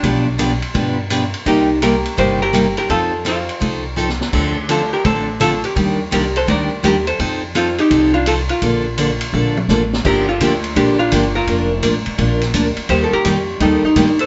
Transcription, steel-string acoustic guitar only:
X:1
M:4/4
L:1/16
Q:"Swing" 1/4=168
K:Bb
V:1 name="Steel-string acoustic guitar"
[=B,,F,=B,DG=B]2 z2 [B,,F,B,DGB] z3 [B,,F,B,DGB]2 z2 [B,,F,B,DGB] z3 | [C,G,B,EG]2 z2 [C,G,B,EG] z3 [C,G,B,EG]2 z2 [C,G,B,EG] z3 | [F,CEA]2 z2 [F,CEA] z3 [F,CEA]2 z2 [F,CEA] z3 | [D,F,CDA]2 z2 [D,F,CDA] z3 [D,F,CDA]2 z2 [D,F,CDA] z3 |
[E,G,B,DG]2 z2 [E,G,B,DG] z3 [E,G,B,DG]2 z2 [E,G,B,DG] z3 | [F,CEA]2 z2 [F,CEA] z3 [F,CEA]2 z2 [F,CEA] z3 | [D,F,B,DA]2 z2 [D,F,B,DA] z3 [D,F,B,DA]2 z2 [D,F,B,DA] z3 | [D,F,B,DG]2 z2 [D,F,B,DG] z3 [D,F,B,DG]2 z2 [D,F,B,DG] z3 |
[F,B,DFB]2 z2 [F,B,DFB] z3 [F,B,DFB]2 z2 [F,B,DFB] z3 | [E,G,B,EG]2 z2 [E,G,B,EG] z3 [E,G,B,EG]2 z2 [E,G,B,EG] z3 |]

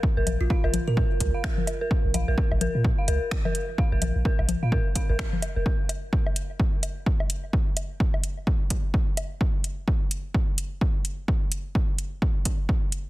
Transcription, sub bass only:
X:1
M:4/4
L:1/16
Q:"Swing 16ths" 1/4=128
K:Bbm
V:1 name="Sub bass" clef=bass
z B,,, B,,, B,,, z B,,,2 B,,2 z D,, z4 z | z B,,, B,,, B,,, z B,,,2 B,,2 z D,, z4 z | z B,,, B,,, B,,, z B,,,2 B,,2 z2 A,,, z3 F,,, | z16 |
z16 | z16 | z16 |]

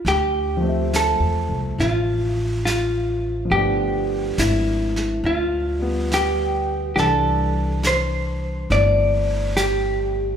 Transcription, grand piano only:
X:1
M:4/4
L:1/8
Q:"Swing" 1/4=70
K:Ddor
V:1 name="Grand piano"
z [F,A,Ce]6- [F,A,Ce] | [F,A,B,D]4- [F,A,B,D] [G,B,]3 | [E,G,D]4 [A,CE]4 |]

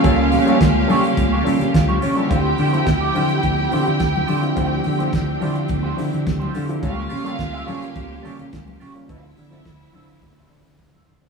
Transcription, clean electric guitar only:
X:1
M:4/4
L:1/16
Q:1/4=106
K:Dm
V:1 name="Clean electric guitar"
[FG^c] z2 [FGc] z2 [FGc] z2 [FGc] z3 [FGc] [FGc] z | [FGc] z [FGc] [FGc] z [FGd] [FGc] z3 [FGc] z3 [FGc] z | [FGc] z2 [FGc] z2 [FGc] z2 [FGc] z3 [FGc] [FGc] z | [FG^c] z [FGc] [FGc] z [FGe] [FGc] z3 [FGc] z3 [FGc] z |
[Fce] z2 [Fce] z2 [Fce] z2 [Fce] z3 [Fce] [Fce] z |]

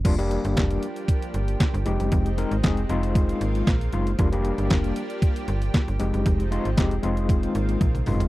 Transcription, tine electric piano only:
X:1
M:4/4
L:1/16
Q:1/4=116
K:Gphr
V:1 name="Tine electric piano"
[G,B,DF] [G,B,DG]4- [G,B,DG] z8 [A,CEG]2- | [A,CEG] z [A,CEB] z [A,CEA] z [A,CEF]6 z2 [A,CEF] z | [G,B,DF] [G,B,DG]4- [G,B,DG] z8 [A,CEG]2- | [A,CEG] z [A,CEF] z [A,CEG] z [A,CEF]6 z2 [A,CEF] z |]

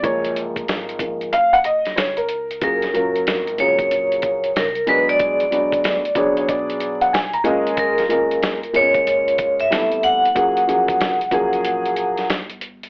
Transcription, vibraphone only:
X:1
M:4/4
L:1/16
Q:"Swing 16ths" 1/4=93
K:F#
V:1 name="Vibraphone"
z16 | A6 c6 A2 B =d- | =d6- d z8 z | A6 c4- c =e3 f2- |
f12 z4 |]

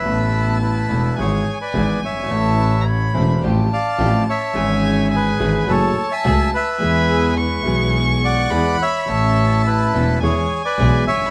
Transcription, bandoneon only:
X:1
M:4/4
L:1/16
Q:1/4=106
K:A
V:1 name="Bandoneon"
[Be]4 [EB]4 [Gc]3 [Bd]3 [ce]2- | [ce]4 z6 [d=f]4 [ce]2- | [ce]4 [GB]4 [Ac]3 [eg]3 [Be]2- | [Be]4 z6 [df]4 [ce]2- |
[ce]4 [EB]4 [Gc]3 [Bd]3 [ce]2 |]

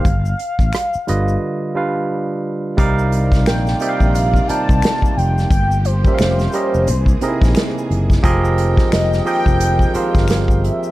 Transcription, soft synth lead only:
X:1
M:4/4
L:1/8
Q:"Swing 16ths" 1/4=88
K:Cm
V:1 name="Soft synth lead"
f6 z2 | z2 g g f =a2 g | g c6 z | z2 e g2 f2 =e |]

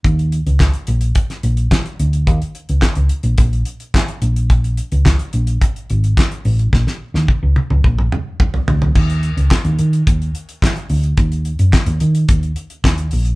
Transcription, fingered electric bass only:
X:1
M:4/4
L:1/16
Q:1/4=108
K:Bbphr
V:1 name="Fingered electric bass" clef=bass
E,,3 D,,2 z B,,,2 z2 B,,,2 z2 =D,,2 | E,, z2 D,, z D,, z B,,, B,,,2 z4 B,,,2- | B,,,3 D,,2 z B,,,2 z2 A,,,2 z2 =A,,,2 | B,,, z2 E,, z D,, z D,, B,,,2 z4 =D,,2 |
E,,3 D,, z E,, E,2 E,,2 z4 =D,,2 | E,,3 G,, z E,, E,2 E,,2 z2 E,,2 B,,,2 |]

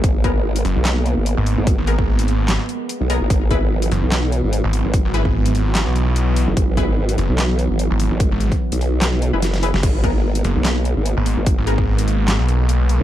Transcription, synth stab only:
X:1
M:4/4
L:1/16
Q:"Swing 16ths" 1/4=147
K:G#m
V:1 name="Synth stab"
z2 [B,GA] z12 z | z2 [B,GA] z8 z3 [B,GA] z | z2 [EGB] z12 z | z2 [EGB] z12 z |
z2 [EGB] z12 z | z8 z3 [EGB] z2 [EGB] z | z2 [B,GA] z12 z | z2 [B,GA] z12 z |]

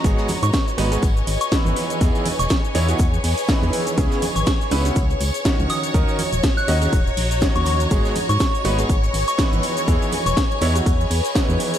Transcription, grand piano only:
X:1
M:4/4
L:1/16
Q:"Swing 16ths" 1/4=122
K:G#m
V:1 name="Grand piano"
[G,,B,DFG]2 z4 [G,,B,DFB] [G,,B,DFG] z4 [E,B,DEB]4 | [E,B,DEG]2 z4 [E,B,DEc] [E,B,DEF] z4 [E,B,DEB]4 | [C,B,CEG]2 z4 [C,B,CEB] [C,B,CEF] z4 [D,CDFc]4 | [D,CDFA]2 z4 [D,CDFd] [D,CDFG] z4 [D,CDFc]4 |
[G,,B,DFG]2 z4 [G,,B,DFB] [G,,B,DFG] z4 [E,B,DEB]4 | [E,B,DEG]2 z4 [E,B,DEc] [E,B,DEF] z4 [E,B,DEB]4 |]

